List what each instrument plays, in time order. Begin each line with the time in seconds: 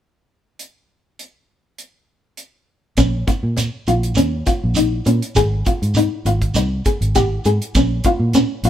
0.59 closed hi-hat
1.19 closed hi-hat
1.78 closed hi-hat
2.37 closed hi-hat
2.97 fingered electric bass A#1, nylon-string guitar C#4, kick, closed hi-hat, shekere
3.27 muted nylon-string guitar stroke, kick, closed hi-hat, shekere
3.43 fingered electric bass A#2
3.57 muted nylon-string guitar stroke, closed hi-hat, shekere
3.87 fingered electric bass A#1, nylon-string guitar F4, closed hi-hat, shekere
4.03 closed hi-hat
4.15 fingered electric bass D#2, nylon-string guitar C#4, closed hi-hat, shekere
4.46 nylon-string guitar F4, muted fingered electric bass stroke, kick, closed hi-hat, shekere
4.64 fingered electric bass A#1
4.75 nylon-string guitar D#4, closed hi-hat, shekere
5.05 fingered electric bass A#2, nylon-string guitar C#4, closed hi-hat, shekere
5.22 closed hi-hat
5.35 fingered electric bass G#1, nylon-string guitar G#4, kick, closed hi-hat, shekere
5.65 nylon-string guitar F4, kick, closed hi-hat, shekere
5.82 fingered electric bass G#2, closed hi-hat
5.94 nylon-string guitar D#4, closed hi-hat, shekere
6.25 fingered electric bass G#1, nylon-string guitar F4, closed hi-hat, shekere
6.42 kick, closed hi-hat
6.54 fingered electric bass C2, nylon-string guitar D#4, closed hi-hat, shekere
6.85 nylon-string guitar G#4, muted fingered electric bass stroke, kick, closed hi-hat, shekere
7.01 fingered electric bass G#1, closed hi-hat
7.15 nylon-string guitar G4, kick, closed hi-hat, shekere
7.44 fingered electric bass G#2, nylon-string guitar G#4, closed hi-hat, shekere
7.62 closed hi-hat
7.75 fingered electric bass A#1, nylon-string guitar C#4, kick, closed hi-hat, shekere
8.04 nylon-string guitar F4, kick, closed hi-hat, shekere
8.19 fingered electric bass A#2
8.33 nylon-string guitar C#4, closed hi-hat, shekere
8.63 fingered electric bass A#1, nylon-string guitar F4, closed hi-hat, shekere